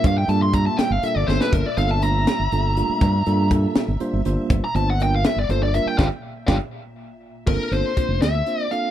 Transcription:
<<
  \new Staff \with { instrumentName = "Lead electric guitar" } { \time 6/8 \key g \dorian \tempo 4. = 81 f''16 g''16 a''16 c'''16 bes''16 a''16 g''16 f''16 e''16 d''16 c''16 b'16 | bes'16 d''16 f''16 a''16 bes''2~ | bes''4 r2 | r16 bes''16 a''16 fis''16 g''16 f''16 e''16 d''16 c''16 d''16 e''16 g''16 |
<d'' f'' g''>8 r8 <d'' f'' g''>8 r4. | bes'8 c''4 e''4 f''8 | }
  \new Staff \with { instrumentName = "Tine electric piano" } { \time 6/8 \key g \dorian <g bes d' f' bes'>8 <g bes d' f' a'>8 <g bes d' f' g'>4 <g bes d' f' a'>8 <g bes d' f' a'>8~ | <g bes d' f' a'>8 <g bes d' f' a'>8 <g a bes d' f'>4 <g bes d' f' a'>8 <g a bes d' f'>8~ | <g a bes d' f'>8 <g bes d' f' a'>8 <g bes d' f' a'>4 <g bes d' f' c''>8 <g bes d' f' c''>8~ | <g bes d' f' c''>8 <g bes d' f' c''>8 <g bes d' f' bes'>4 <g bes d' f' a'>8 <g bes d' f' bes'>8 |
<d' f' g'>8 r8 <d' f' g'>8 r4. | <bes c' d' f' a'>8 <bes c' d' f' a'>8 <bes c' d' f' c''>4 <bes c' d' f' c''>8 <bes c' d' f' a'>8 | }
  \new Staff \with { instrumentName = "String machine" } { \time 6/8 \key g \dorian <bes, e''>2.~ | <bes, e''>2.~ | <bes, e''>2.~ | <bes, e''>2.~ |
<bes, e''>2. | r2. | }
  \new Staff \with { instrumentName = "Fingered electric bass" } { \clef bass \time 6/8 \key g \dorian g,8 g,4 r16 g,,16 r16 g,,16 g,,16 r16 | g,,16 r16 g,,4~ g,,16 g,,16 g,,8. r16 | g,8 g,4 r16 g,,16 r16 g,,16 g,,16 r16 | g,,16 r16 g,,4~ g,,16 g,,16 g,,8. r16 |
g,,16 r8. g,,16 r4. r16 | g,,16 r16 g,,16 r8 f,,16 d,8 r4 | }
  \new DrumStaff \with { instrumentName = "Drums" } \drummode { \time 6/8 <hh bd>8 hh8 <hh bd>8 <hh sn>8 hh8 sn16 sn16 | <hh bd>8 hh8 hh8 <hh sn>8 hh8 hh8 | <hh bd>8 hh8 <hh bd>8 <hh sn>8 hh8 hh8 | <hh bd>8 hh8 hh8 <hh sn>8 hh8 hh8 |
<bd sn>4 <bd sn>8 r4. | <cymc bd>8 hh8 <hh bd>8 <hh sn>8 hh8 hh8 | }
>>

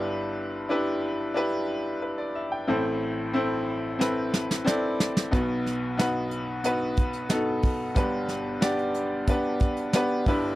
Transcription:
<<
  \new Staff \with { instrumentName = "Upright piano" } { \time 4/4 \key g \major \tempo 4 = 91 << { r2. b'16 d''16 e''16 g''16~ | g''16 r2. r8. | r1 | r1 | } \\ { <d' e' g' b'>4 <d' e' g' b'>4 <d' e' g' b'>4 r4 | <c' e' a' c''>4 <c' e' a' c''>4 <c' e' a' b'>4 <c' e' a' d''>4 | <b dis' fis' b'>4 <b dis' fis' b'>4 <b dis' fis' b'>4 <b dis' fis' a'>4 | <b d' g' b'>4 <b d' g' d''>4 <b d' g' b'>4 <b d' g' b'>8 <d' e' g' b'>8 | } >> }
  \new Staff \with { instrumentName = "Upright piano" } { \clef bass \time 4/4 \key g \major <g,, g,>2.~ <g,, g,>8 r8 | <a,, a,>1 | <b,, b,>1 | <g,, g,>2.~ <g,, g,>8 <g,, g,>8 | }
  \new DrumStaff \with { instrumentName = "Drums" } \drummode { \time 4/4 r4 r4 r4 r4 | r4 r4 sn8 sn16 sn16 sn8 sn16 sn16 | <hh bd>8 <hh sn>8 <hh sn>8 hh8 hh8 <hh bd>16 hh16 <hh sn>8 <hho bd>8 | <hh bd>8 <hh sn>8 <hh sn>16 hh16 hh8 <hh bd>8 <hh bd>16 hh16 <hh sn>8 <hho bd>8 | }
>>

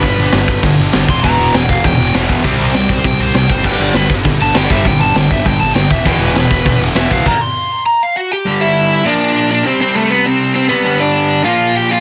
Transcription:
<<
  \new Staff \with { instrumentName = "Overdriven electric guitar" } { \time 4/4 \key g \major \tempo 4 = 200 b'2 r4. c'''8 | bes''4 g''8 f''8 g''4 r4 | r4 g''8 c''8 g''8 c''8 g''8 c''8 | g''8 d''8 b'8 r4 a''8 g''8 e''8 |
g''8 a''8 g''8 e''8 g''8 a''8 g''8 e''8 | g''8 b'2 r8 e''8 f''8 | ais''8 bis''4. ais''8 eis''8 <fis' fis''>8 <g' g''>8~ | <g' g''>8 <e' e''>4. <d' d''>4. <d' d''>8 |
<c' c''>8 <c' c''>8 <a a'>8 <b b'>8 <c' c''>4 <c' c''>8 <b b'>8~ | <b b'>8 <d' d''>4. <f' f''>4 <g' g''>8 <f' f''>8 | }
  \new Staff \with { instrumentName = "Distorted electric guitar" } { \clef bass \time 4/4 \key g \major <g, d g>2.~ <g, d g>8 <e, b, e>8~ | <e, b, e>2.~ <e, b, e>8 r8 | <c g c'>1 | <g, d g>1 |
<g, d g>2.~ <g, d g>8 <e, b, e>8~ | <e, b, e>2.~ <e, b, e>8 r8 | r1 | r1 |
r1 | r1 | }
  \new Staff \with { instrumentName = "Distorted electric guitar" } { \clef bass \time 4/4 \key g \major <g, d>8 r8 <g, d>8 r8 <g, d>8 r8 <g, d>8 r8 | <e, b, e>4 <e, b,>8 r8 <e, b,>8 r8 <e, b, e>4 | <c g c'>4 <c g>8 r8 <c g>8 r8 <c g>8 r8 | <g, d g>4 <g, d>8 r8 <g, d>8 r8 <g, d g>4 |
<g, d>8 r8 <g, d>8 r8 <g, d>8 r8 <g, d>8 r8 | <e, b, e>4 <e, b,>8 r8 <e, b,>8 r8 <e, b, e>4 | r1 | <g, d g>2 <bes, f bes>2 |
<c g c'>2.~ <c g c'>8 <c g c'>8 | <g, d g>2 <bes, f bes>2 | }
  \new Staff \with { instrumentName = "Overdriven electric guitar" } { \clef bass \time 4/4 \key g \major <g, d>8 r8 <g, d>8 r8 <g, d>8 r8 <g, d>8 r8 | <e, b, e>4 <e, b,>8 r8 <e, b,>8 r8 <e, b, e>4 | <c g c'>4 <c g>8 r8 <c g>8 r8 <c g>8 r8 | <g, d g>4 <g, d>8 r8 <g, d>8 r8 <g, d g>4 |
<g, d>8 r8 <g, d>8 r8 <g, d>8 r8 <g, d>8 r8 | <e, b, e>4 <e, b,>8 r8 <e, b,>8 r8 <e, b, e>4 | r1 | r1 |
r1 | r1 | }
  \new Staff \with { instrumentName = "Picked electric bass" } { \clef bass \time 4/4 \key g \major g,,8 g,,8 g,,8 g,,8 g,,8 g,,8 g,,8 e,,8 | e,,8 e,,8 e,,8 e,,8 e,,8 e,,8 e,,8 e,,8 | c,8 c,8 c,8 c,8 c,8 c,8 c,8 fis,,8 | g,,8 g,,8 g,,8 g,,8 g,,8 g,,8 g,,8 g,,8 |
g,,8 g,,8 g,,8 g,,8 g,,8 g,,8 g,,8 e,,8 | e,,8 e,,8 e,,8 e,,8 e,,8 e,,8 e,,8 c,8 | r1 | r1 |
r1 | r1 | }
  \new DrumStaff \with { instrumentName = "Drums" } \drummode { \time 4/4 <hho bd>4 <hho sn>8 bd8 <hho bd>4 <hho sn>8 bd8 | <hho bd>4 <hho sn>8 bd8 <hho bd>4 <hho sn>8 bd8 | <hho bd>4 <hho sn>8 bd8 <hho bd>4 <hho sn>8 bd8 | <cymc bd>4 <hho sn>8 bd8 <hho bd>4 <hho sn>8 bd8 |
<hho bd>4 <hho sn>8 bd8 <hho bd>4 <hho sn>8 bd8 | <hho bd>4 <hho sn>8 bd8 <hho bd>4 <hho sn>8 bd8 | <cymc bd>4 r4 r4 r4 | r4 r4 r4 r4 |
r4 r4 r4 r4 | r4 r4 r4 r4 | }
>>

